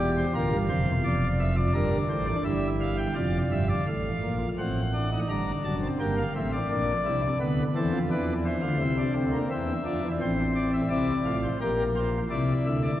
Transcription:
0.00 0.23 E1 medium
0.00 0.23 E2 medium
0.00 0.25 G4 medium
0.00 0.10 D5 medium
0.18 0.33 C5 medium
0.35 0.50 D1 medium
0.35 0.50 D2 medium
0.35 1.56 F4 medium
0.35 0.57 A#4 medium
0.52 0.67 G1 medium
0.52 0.67 G2 medium
0.69 0.85 F1 medium
0.69 0.85 F2 medium
0.69 0.91 C5 medium
0.87 1.03 E1 medium
0.87 1.02 E2 medium
1.04 1.65 F1 medium
1.04 1.65 F2 medium
1.04 1.26 D5 medium
1.40 1.55 E5 medium
1.57 1.73 D5 medium
1.74 1.97 G1 medium
1.74 1.97 G2 medium
1.74 2.36 D4 medium
1.74 1.97 A#4 medium
2.09 2.32 A1 medium
2.09 2.32 A2 medium
2.09 2.26 C5 medium
2.27 2.43 D5 medium
2.45 3.06 G1 medium
2.45 3.06 G2 medium
2.45 3.06 E4 medium
2.45 2.67 E5 medium
2.81 2.96 F5 medium
2.98 3.14 G5 medium
3.15 3.38 F1 medium
3.15 3.38 F2 medium
3.15 4.38 F4 medium
3.15 3.38 D5 medium
3.51 3.74 G1 medium
3.51 3.74 G2 medium
3.51 3.67 E5 medium
3.69 3.85 D5 medium
3.87 4.10 A1 medium
3.87 4.09 A2 medium
3.87 4.48 F5 medium
4.22 4.45 A#1 medium
4.22 4.45 A#2 medium
4.58 5.19 A1 medium
4.58 5.19 A2 medium
4.58 4.80 C4 medium
4.58 5.19 F#5 medium
4.94 5.09 D4 medium
5.13 5.27 D#4 medium
5.29 5.52 G1 medium
5.29 5.51 G2 medium
5.29 5.75 D4 medium
5.29 5.51 A#5 medium
5.65 5.87 F#1 medium
5.65 5.87 F#2 medium
5.65 5.87 A5 medium
5.82 5.97 C4 medium
6.00 6.22 G1 medium
6.00 6.22 G2 medium
6.00 6.22 A#3 medium
6.00 6.15 G5 medium
6.17 6.33 F5 medium
6.35 6.57 A1 medium
6.35 6.57 A2 medium
6.35 6.57 C4 medium
6.35 6.51 E5 medium
6.53 7.29 D5 medium
6.70 6.92 A#1 medium
6.70 6.92 A#2 medium
6.70 6.92 D4 medium
7.05 7.27 C2 medium
7.05 7.27 C3 medium
7.05 7.21 E4 medium
7.23 7.38 D4 medium
7.40 7.62 D2 medium
7.40 7.62 D3 medium
7.40 7.62 B3 medium
7.40 7.62 B4 medium
7.76 7.91 E2 medium
7.76 7.91 E3 medium
7.76 7.98 C4 medium
7.76 7.98 A4 medium
7.93 8.08 F2 medium
7.93 8.08 F3 medium
8.11 8.56 E2 medium
8.11 8.56 E3 medium
8.11 8.33 D4 medium
8.11 8.33 B4 medium
8.45 8.61 E4 medium
8.45 9.36 C5 medium
8.62 8.78 D2 medium
8.62 8.78 D3 medium
8.62 8.78 F4 medium
8.80 9.02 C2 medium
8.80 9.02 C3 medium
8.80 8.96 E4 medium
8.98 9.13 D4 medium
9.16 9.38 D2 medium
9.16 9.38 D3 medium
9.16 9.31 C4 medium
9.33 9.48 A#3 medium
9.51 9.72 E2 medium
9.51 9.72 E3 medium
9.51 9.72 C4 medium
9.51 10.11 E5 medium
9.85 10.01 F2 medium
9.85 10.01 F3 medium
9.85 10.07 D4 medium
10.03 10.18 E2 medium
10.03 10.18 E3 medium
10.21 10.81 A1 medium
10.21 10.81 A2 medium
10.21 10.81 C4 medium
10.21 10.42 C5 medium
10.56 10.71 D5 medium
10.73 10.88 E5 medium
10.90 11.12 C2 medium
10.90 11.12 C3 medium
10.90 11.12 E4 medium
10.90 11.35 D5 medium
11.25 11.47 A1 medium
11.25 11.47 A2 medium
11.25 11.47 F4 medium
11.43 11.58 C5 medium
11.61 12.21 A#1 medium
11.61 12.21 A#2 medium
11.61 11.83 G4 medium
11.61 11.83 A#4 medium
11.96 12.18 F4 medium
11.96 12.18 C5 medium
12.31 12.53 C2 medium
12.31 12.53 C3 medium
12.31 12.92 E4 medium
12.31 12.52 D5 medium
12.66 12.88 D2 medium
12.66 12.88 D3 medium
12.66 12.81 E5 medium
12.83 12.99 D5 medium

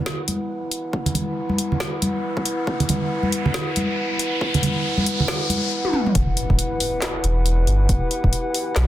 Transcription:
0.00 6.11 E4 medium
0.00 6.11 B4 medium
0.00 6.11 F#5 medium
0.00 riser medium
0.06 snare loud
0.28 closed hi-hat medium
0.28 high conga medium
0.71 closed hi-hat medium
0.93 kick loud
1.06 closed hi-hat soft
1.06 low conga medium
1.15 closed hi-hat medium
1.15 high conga medium
1.15 low conga medium
1.49 high conga medium
1.58 closed hi-hat medium
1.72 low conga medium
1.80 snare loud
2.02 closed hi-hat medium
2.02 high conga medium
2.37 kick loud
2.46 closed hi-hat medium
2.67 kick loud
2.80 closed hi-hat soft
2.80 low conga medium
2.89 closed hi-hat medium
2.89 high conga medium
2.89 low conga medium
3.23 high conga medium
3.32 closed hi-hat medium
3.46 low conga medium
3.54 snare loud
3.76 closed hi-hat medium
3.76 high conga medium
4.19 closed hi-hat medium
4.41 kick loud
4.54 closed hi-hat soft
4.54 low conga medium
4.62 closed hi-hat medium
4.62 high conga medium
4.62 low conga medium
4.97 high conga medium
5.06 closed hi-hat medium
5.20 low conga medium
5.28 snare loud
5.50 closed hi-hat medium
5.50 high conga medium
5.85 high tom medium
5.93 mid tom medium
6.07 mid tom medium
6.15 6.27 E1 loud
6.15 8.87 E4 medium
6.15 8.87 G4 medium
6.15 8.87 B4 medium
6.15 8.87 F#5 medium
6.15 kick loud
6.15 closed hi-hat medium
6.15 impact medium
6.37 closed hi-hat medium
6.50 6.58 D1 loud
6.50 kick medium
6.59 closed hi-hat medium
6.80 open hi-hat medium
7.02 snare loud
7.02 clap loud
7.02 closed hi-hat medium
7.24 7.66 E1 medium
7.24 closed hi-hat medium
7.46 closed hi-hat medium
7.67 7.88 G1 medium
7.67 closed hi-hat medium
7.89 8.01 E1 loud
7.89 kick loud
7.89 closed hi-hat medium
8.11 closed hi-hat medium
8.24 8.32 D1 loud
8.24 kick medium
8.33 closed hi-hat medium
8.54 open hi-hat medium
8.76 8.87 B1 medium
8.76 snare loud
8.76 clap loud
8.76 closed hi-hat medium

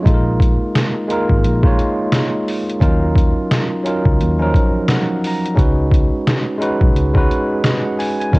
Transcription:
0.03 0.57 A#1 medium
0.03 0.92 G#3 medium
0.03 0.92 A#3 medium
0.03 0.93 D#4 medium
0.03 0.94 F4 medium
0.03 kick loud
0.07 0.14 A4 medium
0.07 closed hi-hat medium
0.14 0.98 A#4 medium
0.40 kick loud
0.40 closed hi-hat medium
0.75 finger snap medium
0.75 snare loud
0.75 closed hi-hat medium
1.08 1.52 G#3 medium
1.08 1.53 A#3 medium
1.08 1.54 D#4 medium
1.08 1.54 F4 medium
1.08 closed hi-hat medium
1.13 1.55 A#4 medium
1.30 1.43 G#1 medium
1.30 kick medium
1.44 1.76 A#1 medium
1.44 closed hi-hat medium
1.63 2.62 G#3 medium
1.63 2.62 A#3 medium
1.63 2.63 D#4 medium
1.63 2.63 F4 medium
1.63 kick loud
1.67 2.64 C#5 medium
1.79 closed hi-hat medium
2.12 finger snap loud
2.12 snare loud
2.12 closed hi-hat medium
2.48 open hi-hat soft
2.70 closed hi-hat medium
2.79 3.33 D#2 medium
2.79 2.88 F3 medium
2.79 3.69 C#4 medium
2.79 3.69 D#4 medium
2.79 3.69 F4 medium
2.79 3.70 A#4 medium
2.79 kick loud
2.79 closed hi-hat medium
2.86 3.71 F#3 medium
3.15 kick loud
3.15 closed hi-hat medium
3.51 finger snap medium
3.51 snare loud
3.51 closed hi-hat medium
3.83 4.28 F#3 medium
3.83 4.29 C#4 medium
3.83 4.29 D#4 medium
3.83 4.30 F4 medium
3.83 closed hi-hat medium
3.88 4.30 A#4 medium
4.05 4.19 C#2 medium
4.05 kick medium
4.21 4.52 D#2 medium
4.21 closed hi-hat medium
4.38 4.40 F3 medium
4.38 5.39 F3 medium
4.38 5.38 C#4 medium
4.38 5.38 D#4 medium
4.42 5.40 F#3 medium
4.42 5.39 A#4 medium
4.54 kick medium
4.54 closed hi-hat medium
4.88 5.21 F#5 medium
4.88 finger snap loud
4.88 snare loud
4.88 closed hi-hat medium
5.24 5.57 A#5 medium
5.24 open hi-hat soft
5.46 closed hi-hat medium
5.55 6.09 C#2 loud
5.55 6.44 G#3 medium
5.55 6.44 C#4 medium
5.55 6.45 D#4 medium
5.55 6.45 F#4 medium
5.55 kick loud
5.59 6.46 B4 medium
5.59 closed hi-hat medium
5.92 kick medium
5.92 closed hi-hat medium
6.27 finger snap medium
6.27 snare loud
6.27 closed hi-hat medium
6.58 7.03 G#3 medium
6.58 7.04 C#4 medium
6.58 7.05 D#4 medium
6.58 7.05 F#4 medium
6.58 closed hi-hat medium
6.63 7.06 B4 medium
6.81 6.94 B1 medium
6.81 kick loud
6.95 7.27 C#2 medium
6.95 closed hi-hat medium
7.14 8.13 G#3 medium
7.14 8.13 C#4 medium
7.14 8.14 D#4 medium
7.14 8.15 F#4 medium
7.14 kick medium
7.18 8.15 B4 loud
7.31 closed hi-hat medium
7.64 7.84 D#5 medium
7.64 finger snap loud
7.64 snare loud
7.64 closed hi-hat medium
7.85 7.98 F#5 medium
7.99 8.18 G#5 medium
7.99 open hi-hat soft
8.20 8.39 G#5 medium
8.20 closed hi-hat soft
8.31 8.39 D#2 medium
8.31 8.39 F#3 medium
8.31 8.39 C#4 medium
8.31 8.39 D#4 medium
8.31 8.39 F4 medium
8.31 kick loud
8.31 closed hi-hat medium
8.36 8.39 A#4 medium

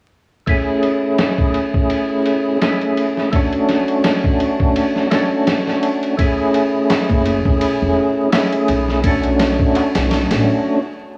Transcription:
0.46 2.57 A3 medium
0.46 2.58 C#4 medium
0.46 2.59 E4 medium
0.46 kick medium
0.46 ride medium
0.51 2.59 G#4 medium
0.83 ride medium
1.18 snare loud
1.18 ride medium
1.38 kick medium
1.54 ride medium
1.74 kick medium
1.90 ride medium
2.26 ride medium
2.62 3.29 A3 medium
2.62 3.29 C#4 medium
2.62 3.30 E4 medium
2.62 3.30 G#4 loud
2.62 snare medium
2.62 ride medium
2.81 ride soft
2.97 ride medium
3.17 snare soft
3.32 5.07 A3 medium
3.32 5.08 C#4 medium
3.32 5.08 D4 medium
3.32 5.09 F#4 medium
3.32 kick medium
3.32 ride medium
3.53 ride soft
3.69 snare soft
3.69 ride medium
3.88 ride soft
4.04 snare loud
4.04 ride medium
4.24 kick medium
4.40 ride medium
4.60 kick medium
4.76 ride medium
4.96 snare soft
5.11 6.14 A3 medium
5.11 6.15 C#4 medium
5.11 6.16 D4 medium
5.11 6.16 F#4 medium
5.11 snare medium
5.11 ride medium
5.47 snare medium
5.47 ride medium
5.67 snare soft
5.83 ride medium
6.03 ride soft
6.17 8.28 A3 medium
6.17 8.29 C#4 medium
6.17 8.30 E4 medium
6.17 kick medium
6.17 ride medium
6.21 8.30 G#4 medium
6.54 ride medium
6.90 snare loud
6.90 ride medium
6.90 darbuka tek medium
7.10 7.41 F#1 medium
7.10 kick medium
7.26 ride medium
7.45 7.60 E1 medium
7.45 kick medium
7.61 ride medium
7.82 7.96 E1 medium
8.32 9.00 A3 medium
8.32 9.00 C#4 medium
8.32 9.01 E4 medium
8.32 9.01 G#4 loud
8.32 snare loud
8.32 ride medium
8.32 darbuka tek medium
8.53 ride soft
8.68 9.56 B1 medium
8.68 ride medium
8.88 snare soft
9.03 10.78 A3 medium
9.03 10.79 C#4 medium
9.03 10.80 D4 medium
9.03 10.80 F#4 loud
9.03 kick medium
9.03 ride medium
9.24 ride soft
9.39 snare medium
9.39 ride medium
9.59 kick medium
9.75 ride medium
9.75 darbuka tek medium
9.95 10.27 B1 medium
9.95 snare medium
9.95 ride medium
10.11 snare medium
10.11 ride medium
10.31 10.46 A1 medium
10.31 snare medium
10.31 ride medium

